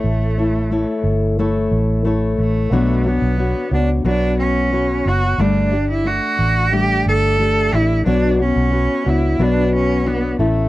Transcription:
X:1
M:4/4
L:1/16
Q:1/4=90
K:Bm
V:1 name="Steel-string acoustic guitar"
[A,EAc]2 [EAc]2 [A,EAc]4 [A,EAc]4 [A,EAc]4 | [B,,F,B,DFc]2 [B,DFc]2 [B,DFc]2 [B,DFc]2 [B,,F,B,Fc]4 [B,Fc]4 | [G,A,DGd]2 [DGd]2 [A,Dd]4 [G,A,DGd]4 [A,DGd]4 | [B,,F,B,DFc]2 [B,Fc]2 [B,Fc]2 [B,DFc]2 [B,,F,B,Fc]4 [B,DFc]2 [A,,A,CEA]2 |]
V:2 name="Cello"
A,6 z8 A,2- | A,2 B,4 D2 D2 C4 F2 | D3 E F4 G2 A4 E2 | D2 C4 E2 D2 C2 B,2 A,2 |]
V:3 name="Fingered electric bass" clef=bass
A,,,4- A,,, z G,,,4 A,,,4 A,,,2 | B,,,3 B,,,2 z C,,2 B,,,6 F,,,2 | G,,,4- G,,, z A,,,4 G,,,4 A,,,2 | B,,,3 B,,,2 z C,,2 B,,,6 A,,,2 |]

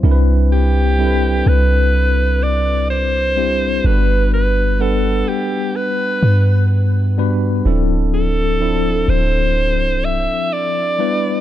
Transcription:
X:1
M:4/4
L:1/16
Q:"Swing 16ths" 1/4=63
K:Clyd
V:1 name="Alto saxophone"
z2 G4 B4 d2 c4 | B2 B2 A2 G2 B4 z4 | z2 A4 c4 e2 d4 |]
V:2 name="Tine electric piano"
[G,CDE_B=B]4 [G,CDEAB]8 z2 [G,CDEG]2 | [G,B,DFAB]4 [G,B,DBf]8 z2 [G,B,DFB]2 | [=F,CDEA]4 [F,CDEA]8 z2 [G,B,DEB]2 |]
V:3 name="808-style bass" clef=bass
C,,6 C,,8- C,,2 | G,,,6 z4 G,,6 | D,,,6 D,,,3 C,,,2 z4 z |]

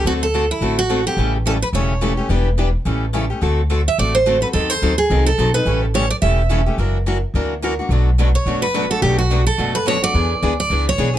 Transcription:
X:1
M:4/4
L:1/8
Q:"Swing" 1/4=214
K:Amix
V:1 name="Steel-string acoustic guitar"
F A2 E2 F2 G- | G z A B c4 | z8 | z3 e d =c2 B |
A ^B2 ^G2 A2 =B- | B z c d e4 | z8 | z3 c2 B2 A |
G F2 A2 B c d- | d3 d2 c2 z |]
V:2 name="Steel-string acoustic guitar"
[D,A,=CFA] z [D,A,CFA] z [D,A,CFA] z [D,A,CFA] z | [E,G,CEA] z [E,G,CEA] z [E,G,CEA] z [E,G,CEA] z | [E,G,DEB] z [E,G,DEB] z [E,G,CEA] z [E,G,CEA] z | [D,A,=CFA] z [D,A,CFA] z [D,A,CFA] z [D,A,CFA] z |
[^D,F,^B,^DA] z [D,F,B,DA] z [D,F,B,DA] z [D,F,B,DA] z | [E,G,CEA] z [E,G,CEA] z [E,G,CEA] z [E,G,CEA] z | [F,DE^A] z [F,DEA] z [F,DEA] z [F,DEA] z | [B,,F,A,DFB] z [B,,F,A,DFB] z [B,,F,A,DFB] z [B,,F,A,DFB] z |
[B,,F,A,DFB] z [B,,F,A,DFB] z [B,,F,A,DFB] z [B,,F,A,DFB] z | [E,B,D^GB] z [E,B,DGB] z [E,B,DGB] z [E,B,DGB] z |]
V:3 name="Steel-string acoustic guitar"
[D,A,=CFA] z [D,A,CFA] z [D,A,CFA] z [D,A,CFA] [CFA] | [C,E,A,CG] z [C,E,A,CG] z [C,E,A,CG] z [C,E,A,CG] [A,CG] | [E,B,DG] z [E,B,DG] z [C,E,A,CG] z [C,E,A,CG] [A,CG] | [D,A,=CFA] z [D,A,CFA] z [D,A,CFA] z [D,A,CFA] [CFA] |
[^D,F,^B,^DA] z [D,F,B,DA] z [D,F,B,DA] z [D,F,B,DA] [B,DA] | [C,E,A,CG] z [C,E,A,CG] z [C,E,A,CG] z [C,E,A,CG] [A,CG] | [E,^A,DF] z [E,A,DF] z [E,A,DF] z [E,A,DF] [A,DF] | [B,,F,A,DF] z [B,,F,A,DF] z [B,,F,A,DF] z [B,,F,A,DF] [A,DF] |
[B,,F,A,DF] z [B,,F,A,DF] z [B,,F,A,DF] z [B,,F,A,DF] [A,DF] | [E,B,D^G] z [E,B,DG] z [E,B,DG] z [E,B,DG] [B,DG] |]
V:4 name="Upright bass" clef=bass
D,,4 A,,,4 | A,,,4 E,,,4 | E,,,4 A,,,4 | D,,4 A,,,4 |
^D,,2 =D,,2 ^B,,,2 =B,,,2 | A,,,4 E,,,4 | F,,,4 D,,4 | B,,,4 F,,,4 |
B,,,4 F,,,4 | E,,2 D,,2 C,,2 B,,,2 |]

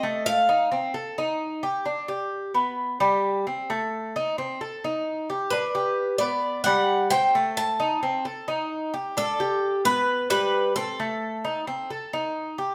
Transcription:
X:1
M:4/4
L:1/8
Q:1/4=131
K:G
V:1 name="Cuban tres"
_e =f3 z4 | z8 | z8 | B3 d2 f2 g- |
g a3 z4 | A3 B2 B2 A- | A6 z2 |]
V:2 name="Cuban tres"
A,2 _E C A E2 G | D G2 B,2 G,2 C | A,2 _E C A E2 G | D G2 B,2 G,2 C |
A,2 _E C A E2 G | D G2 B,2 G,2 C | A,2 _E C A E2 G |]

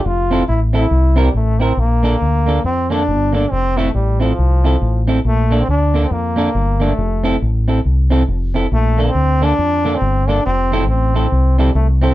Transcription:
X:1
M:4/4
L:1/16
Q:"Swing" 1/4=138
K:F
V:1 name="Clean electric guitar"
z2 [CEA]2 z2 [CEA]2 z2 [CEB]2 z2 [CEB]2 | z2 [B,DA]2 z2 [B,DA]2 z2 [B,DA]2 z2 [B,DA]2 | z2 [CEA]2 z2 [CEA]2 z2 [CEA]2 z2 [CEA]2 | z2 [B,DA]2 z2 [B,DA]2 z2 [B,DA]2 z2 [B,DA]2 |
z2 [CEA]2 z2 [CEA]2 z2 [CEA]2 z2 [CEA]2 | z2 [B,DA]2 z2 [B,DA]2 z2 [B,DA]2 z2 [B,DA]2 | z2 [CEA]2 z2 [CEA]2 z2 [CEA]2 z2 [CEA]2 |]
V:2 name="Trombone"
F4 E2 E4 G,2 A,2 C2 | B,8 C2 D4 D2 | C2 A,2 G,2 F,8 z2 | A,3 C D3 C B,6 A,2- |
A,4 z12 | A,3 C3 D4- D C3 D2 | C4 C6 G,2 A,2 C2 |]
V:3 name="Fingered electric bass" clef=bass
F,,,4 A,,,4 C,,4 A,,,4 | B,,,4 D,,4 F,,4 G,,,4 | F,,,4 A,,,4 C,,4 A,,,4 | B,,,4 D,,4 F,,4 G,,,4 |
F,,,4 A,,,4 C,,4 F,,,4 | B,,,4 D,,4 F,,4 G,,,4 | F,,,4 A,,,4 C,,4 C,,4 |]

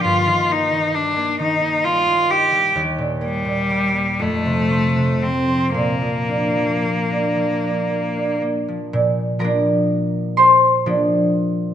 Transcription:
X:1
M:6/8
L:1/16
Q:3/8=41
K:Bb
V:1 name="Cello"
F2 E2 D2 E2 F2 G2 | z2 G,4 A,4 C2 | B,8- B,2 z2 | z12 |]
V:2 name="Harp"
z12 | z12 | z12 | z2 [Bb]4 [cc']6 |]
V:3 name="Harp" clef=bass
[G,,B,] E, B, E, G, B, E, B, G, B, E G, | E,, B,, B, B,, G, B, F,, C, C C, F, C | B,, F, D F, B, D F, D B, D B, F, | B,,2 [F,B,D]6 [F,B,D]4 |]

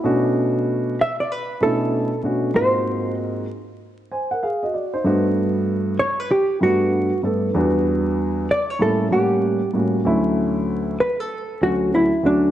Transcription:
X:1
M:4/4
L:1/16
Q:"Swing 16ths" 1/4=96
K:D
V:1 name="Hollow-body jazz guitar"
z6 e d B2 A4 z2 | ^B4 z12 | z6 c B G2 F4 z2 | z6 d c A2 G4 z2 |
z6 B A3 F2 E2 D2 |]
V:2 name="Grand piano"
E z12 z3 | z8 z2 [^B^g] [^Af] [^G^e] [F^d] [F=d] [^DB]- | [^D^B] z12 z3 | z16 |
z16 |]
V:3 name="Grand piano"
[B,,A,CDF]6 z4 [B,,A,CDE]2 z2 [B,,A,CDF]2 | [^G,,^A,^B,^D^EF]6 z8 z2 | [G,,A,B,DF]6 z4 [G,,G,A,B,D]2 z2 [G,,A,B,DA]2 | [E,,G,B,DF]6 z2 [A,,G,_B,CE]2 [A,,G,B,Cf]2 z2 [A,,G,B,CF]2 |
[D,,F,A,CE]6 z4 [D,,F,A,CF]2 z2 [D,,F,A,CF]2 |]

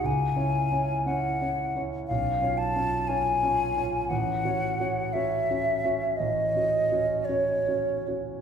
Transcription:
X:1
M:4/4
L:1/16
Q:1/4=58
K:F#dor
V:1 name="Flute"
g4 f3 z ^e2 a2 g4 | f4 e4 d4 c3 z |]
V:2 name="Grand piano"
(3C,,2 [CEc]2 [CEc]2 (3[CEc]2 [CEc]2 [CEc]2 (3B,,,2 [C^Ec]2 [CEc]2 (3[CEc]2 [CEc]2 [CEc]2 | (3A,,,2 [CFc]2 [CFc]2 (3[CFc]2 [CFc]2 [CFc]2 (3A,,,2 [CFc]2 [CFc]2 (3[CFc]2 [CFc]2 [CFc]2 |]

